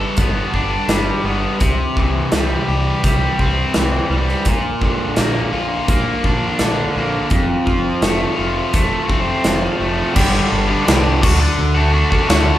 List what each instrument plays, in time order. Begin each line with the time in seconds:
Already playing: overdriven electric guitar G3 B3 A4
0.17 fingered electric bass G1, overdriven electric guitar B3, kick, closed hi-hat
0.54 fingered electric bass G1, overdriven electric guitar D4, kick
0.88 fingered electric bass G1, overdriven electric guitar G3, snare, closed hi-hat
1.24 fingered electric bass G1, overdriven electric guitar B3
1.60 fingered electric bass C2, overdriven electric guitar C3, kick, closed hi-hat
1.96 fingered electric bass C2, overdriven electric guitar E3, kick
2.32 fingered electric bass C2, overdriven electric guitar G3, snare, closed hi-hat
2.68 fingered electric bass C2, overdriven electric guitar G4
3.04 fingered electric bass C2, overdriven electric guitar G3, kick, closed hi-hat
3.39 fingered electric bass C2, overdriven electric guitar C4, kick
3.74 fingered electric bass C2, overdriven electric guitar E3, snare, closed hi-hat
4.10 fingered electric bass C2, overdriven electric guitar G3
4.29 snare
4.45 fingered electric bass A#1, overdriven electric guitar A#2, kick, closed hi-hat
4.81 fingered electric bass A#1, overdriven electric guitar D3, kick
5.16 fingered electric bass A#1, overdriven electric guitar A#3, snare, closed hi-hat
5.53 fingered electric bass A#1, overdriven electric guitar F4
5.88 fingered electric bass A#1, overdriven electric guitar A#3, kick, closed hi-hat
6.23 fingered electric bass A#1, overdriven electric guitar D4, kick
6.59 fingered electric bass A#1, overdriven electric guitar D3, snare, closed hi-hat
6.95 fingered electric bass A#1, overdriven electric guitar A#3
7.30 fingered electric bass F1, overdriven electric guitar F2, kick, closed hi-hat
7.66 fingered electric bass F1, overdriven electric guitar F3, kick
8.02 fingered electric bass F1, overdriven electric guitar A3, snare, closed hi-hat
8.36 fingered electric bass F1, overdriven electric guitar F4
8.73 fingered electric bass F1, overdriven electric guitar A3, kick, closed hi-hat
9.08 fingered electric bass F1, overdriven electric guitar C4, kick
9.43 fingered electric bass F1, overdriven electric guitar F3, snare, closed hi-hat
9.80 fingered electric bass F1, overdriven electric guitar A3
10.14 fingered electric bass G1, overdriven electric guitar G2 D3 G3 B3 D4 G4, kick, crash
10.35 snare
10.52 fingered electric bass G1
10.67 overdriven electric guitar G3 B3 D4 G4
10.85 fingered electric bass C2, overdriven electric guitar G2 D3 G3 B3 D4 G4, snare, ride bell
11.21 fingered electric bass D2, overdriven electric guitar D3 A3 D4 F#4, kick, crash
11.40 muted overdriven electric guitar stroke
11.59 fingered electric bass D2
11.74 overdriven electric guitar A3 D4 F#4
11.92 overdriven electric guitar D3 A3 D4 F#4
12.10 overdriven electric guitar A3 D4 F#4, kick
12.29 fingered electric bass D2, overdriven electric guitar D3 A3 D4 F#4, snare, ride bell